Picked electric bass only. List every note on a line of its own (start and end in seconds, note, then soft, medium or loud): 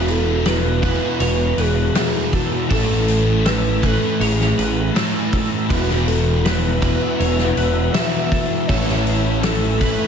0.00 0.98 E1 medium
1.20 1.52 E1 loud
1.57 1.89 E1 medium
2.71 3.97 A1 medium
4.20 4.52 A1 loud
4.58 4.89 A1 medium
5.70 6.97 E1 medium
7.20 7.51 E1 loud
7.57 7.88 E1 medium
8.69 9.96 A1 medium